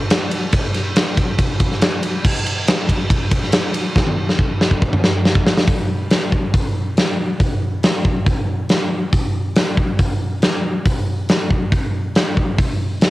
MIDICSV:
0, 0, Header, 1, 2, 480
1, 0, Start_track
1, 0, Tempo, 428571
1, 592, Time_signature, 4, 2, 24, 8
1, 6353, Tempo, 431965
1, 14607, End_track
2, 0, Start_track
2, 0, Title_t, "Drums"
2, 115, Note_on_c, 9, 51, 101
2, 124, Note_on_c, 9, 38, 116
2, 227, Note_off_c, 9, 51, 0
2, 236, Note_off_c, 9, 38, 0
2, 351, Note_on_c, 9, 51, 76
2, 463, Note_off_c, 9, 51, 0
2, 590, Note_on_c, 9, 51, 104
2, 593, Note_on_c, 9, 36, 109
2, 702, Note_off_c, 9, 51, 0
2, 705, Note_off_c, 9, 36, 0
2, 834, Note_on_c, 9, 51, 66
2, 843, Note_on_c, 9, 38, 33
2, 946, Note_off_c, 9, 51, 0
2, 955, Note_off_c, 9, 38, 0
2, 1074, Note_on_c, 9, 51, 96
2, 1083, Note_on_c, 9, 38, 112
2, 1186, Note_off_c, 9, 51, 0
2, 1195, Note_off_c, 9, 38, 0
2, 1314, Note_on_c, 9, 51, 68
2, 1315, Note_on_c, 9, 36, 85
2, 1426, Note_off_c, 9, 51, 0
2, 1427, Note_off_c, 9, 36, 0
2, 1552, Note_on_c, 9, 51, 97
2, 1554, Note_on_c, 9, 36, 100
2, 1664, Note_off_c, 9, 51, 0
2, 1666, Note_off_c, 9, 36, 0
2, 1791, Note_on_c, 9, 51, 79
2, 1794, Note_on_c, 9, 36, 96
2, 1903, Note_off_c, 9, 51, 0
2, 1906, Note_off_c, 9, 36, 0
2, 1923, Note_on_c, 9, 38, 35
2, 2033, Note_on_c, 9, 51, 94
2, 2035, Note_off_c, 9, 38, 0
2, 2042, Note_on_c, 9, 38, 112
2, 2145, Note_off_c, 9, 51, 0
2, 2154, Note_off_c, 9, 38, 0
2, 2271, Note_on_c, 9, 51, 79
2, 2383, Note_off_c, 9, 51, 0
2, 2516, Note_on_c, 9, 36, 114
2, 2518, Note_on_c, 9, 49, 106
2, 2628, Note_off_c, 9, 36, 0
2, 2630, Note_off_c, 9, 49, 0
2, 2760, Note_on_c, 9, 51, 80
2, 2872, Note_off_c, 9, 51, 0
2, 2998, Note_on_c, 9, 51, 110
2, 3007, Note_on_c, 9, 38, 116
2, 3110, Note_off_c, 9, 51, 0
2, 3119, Note_off_c, 9, 38, 0
2, 3236, Note_on_c, 9, 36, 75
2, 3240, Note_on_c, 9, 51, 78
2, 3348, Note_off_c, 9, 36, 0
2, 3352, Note_off_c, 9, 51, 0
2, 3474, Note_on_c, 9, 36, 113
2, 3478, Note_on_c, 9, 51, 102
2, 3586, Note_off_c, 9, 36, 0
2, 3590, Note_off_c, 9, 51, 0
2, 3711, Note_on_c, 9, 51, 83
2, 3713, Note_on_c, 9, 36, 98
2, 3823, Note_off_c, 9, 51, 0
2, 3825, Note_off_c, 9, 36, 0
2, 3845, Note_on_c, 9, 38, 33
2, 3947, Note_on_c, 9, 51, 107
2, 3956, Note_off_c, 9, 38, 0
2, 3956, Note_on_c, 9, 38, 114
2, 4059, Note_off_c, 9, 51, 0
2, 4068, Note_off_c, 9, 38, 0
2, 4190, Note_on_c, 9, 51, 76
2, 4302, Note_off_c, 9, 51, 0
2, 4433, Note_on_c, 9, 36, 113
2, 4440, Note_on_c, 9, 38, 72
2, 4545, Note_off_c, 9, 36, 0
2, 4552, Note_off_c, 9, 38, 0
2, 4557, Note_on_c, 9, 48, 57
2, 4669, Note_off_c, 9, 48, 0
2, 4807, Note_on_c, 9, 38, 58
2, 4915, Note_on_c, 9, 36, 83
2, 4919, Note_off_c, 9, 38, 0
2, 5027, Note_off_c, 9, 36, 0
2, 5165, Note_on_c, 9, 38, 82
2, 5276, Note_on_c, 9, 36, 76
2, 5277, Note_off_c, 9, 38, 0
2, 5388, Note_off_c, 9, 36, 0
2, 5399, Note_on_c, 9, 36, 94
2, 5511, Note_off_c, 9, 36, 0
2, 5521, Note_on_c, 9, 45, 71
2, 5633, Note_off_c, 9, 45, 0
2, 5643, Note_on_c, 9, 38, 98
2, 5755, Note_off_c, 9, 38, 0
2, 5884, Note_on_c, 9, 38, 90
2, 5996, Note_off_c, 9, 38, 0
2, 5996, Note_on_c, 9, 36, 84
2, 6108, Note_off_c, 9, 36, 0
2, 6121, Note_on_c, 9, 38, 99
2, 6233, Note_off_c, 9, 38, 0
2, 6243, Note_on_c, 9, 38, 87
2, 6354, Note_on_c, 9, 46, 48
2, 6355, Note_off_c, 9, 38, 0
2, 6357, Note_on_c, 9, 36, 102
2, 6465, Note_off_c, 9, 46, 0
2, 6468, Note_off_c, 9, 36, 0
2, 6833, Note_on_c, 9, 46, 51
2, 6842, Note_on_c, 9, 38, 102
2, 6945, Note_off_c, 9, 46, 0
2, 6953, Note_off_c, 9, 38, 0
2, 7074, Note_on_c, 9, 36, 69
2, 7185, Note_off_c, 9, 36, 0
2, 7315, Note_on_c, 9, 36, 91
2, 7315, Note_on_c, 9, 46, 42
2, 7426, Note_off_c, 9, 36, 0
2, 7426, Note_off_c, 9, 46, 0
2, 7795, Note_on_c, 9, 46, 46
2, 7804, Note_on_c, 9, 38, 93
2, 7907, Note_off_c, 9, 46, 0
2, 7915, Note_off_c, 9, 38, 0
2, 8272, Note_on_c, 9, 36, 99
2, 8273, Note_on_c, 9, 46, 41
2, 8384, Note_off_c, 9, 36, 0
2, 8384, Note_off_c, 9, 46, 0
2, 8753, Note_on_c, 9, 46, 44
2, 8761, Note_on_c, 9, 38, 104
2, 8864, Note_off_c, 9, 46, 0
2, 8873, Note_off_c, 9, 38, 0
2, 8993, Note_on_c, 9, 36, 74
2, 9104, Note_off_c, 9, 36, 0
2, 9232, Note_on_c, 9, 36, 93
2, 9235, Note_on_c, 9, 46, 39
2, 9344, Note_off_c, 9, 36, 0
2, 9346, Note_off_c, 9, 46, 0
2, 9709, Note_on_c, 9, 46, 42
2, 9718, Note_on_c, 9, 38, 90
2, 9820, Note_off_c, 9, 46, 0
2, 9829, Note_off_c, 9, 38, 0
2, 10193, Note_on_c, 9, 36, 99
2, 10194, Note_on_c, 9, 46, 46
2, 10304, Note_off_c, 9, 36, 0
2, 10305, Note_off_c, 9, 46, 0
2, 10670, Note_on_c, 9, 46, 48
2, 10679, Note_on_c, 9, 38, 104
2, 10781, Note_off_c, 9, 46, 0
2, 10790, Note_off_c, 9, 38, 0
2, 10910, Note_on_c, 9, 36, 78
2, 11021, Note_off_c, 9, 36, 0
2, 11150, Note_on_c, 9, 46, 47
2, 11152, Note_on_c, 9, 36, 88
2, 11262, Note_off_c, 9, 46, 0
2, 11263, Note_off_c, 9, 36, 0
2, 11630, Note_on_c, 9, 46, 44
2, 11639, Note_on_c, 9, 38, 96
2, 11742, Note_off_c, 9, 46, 0
2, 11750, Note_off_c, 9, 38, 0
2, 12112, Note_on_c, 9, 46, 48
2, 12113, Note_on_c, 9, 36, 101
2, 12223, Note_off_c, 9, 46, 0
2, 12224, Note_off_c, 9, 36, 0
2, 12595, Note_on_c, 9, 46, 47
2, 12604, Note_on_c, 9, 38, 105
2, 12706, Note_off_c, 9, 46, 0
2, 12715, Note_off_c, 9, 38, 0
2, 12835, Note_on_c, 9, 36, 74
2, 12946, Note_off_c, 9, 36, 0
2, 13074, Note_on_c, 9, 36, 91
2, 13075, Note_on_c, 9, 46, 38
2, 13185, Note_off_c, 9, 36, 0
2, 13186, Note_off_c, 9, 46, 0
2, 13555, Note_on_c, 9, 46, 44
2, 13564, Note_on_c, 9, 38, 103
2, 13666, Note_off_c, 9, 46, 0
2, 13675, Note_off_c, 9, 38, 0
2, 13796, Note_on_c, 9, 36, 70
2, 13907, Note_off_c, 9, 36, 0
2, 14033, Note_on_c, 9, 46, 45
2, 14034, Note_on_c, 9, 36, 98
2, 14144, Note_off_c, 9, 46, 0
2, 14145, Note_off_c, 9, 36, 0
2, 14511, Note_on_c, 9, 46, 49
2, 14519, Note_on_c, 9, 38, 110
2, 14607, Note_off_c, 9, 38, 0
2, 14607, Note_off_c, 9, 46, 0
2, 14607, End_track
0, 0, End_of_file